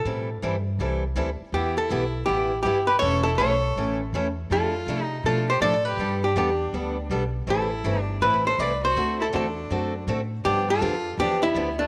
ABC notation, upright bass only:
X:1
M:4/4
L:1/8
Q:"Swing" 1/4=162
K:Am
V:1 name="Upright bass" clef=bass
A,,2 G,,2 C,,2 D,, z | E,,2 B,,,2 A,,,2 G,,,2 | E,,,2 B,,,2 A,,,2 E,,2 | F,,2 C,2 B,,2 A,,2 |
G,,2 E,,2 D,,2 B,,,2 | A,,,2 G,,,2 A,,,2 C,,2 | D,,2 E,,2 ^F,,2 A,,2 | G,,2 F,,2 E,,2 D,,2 |]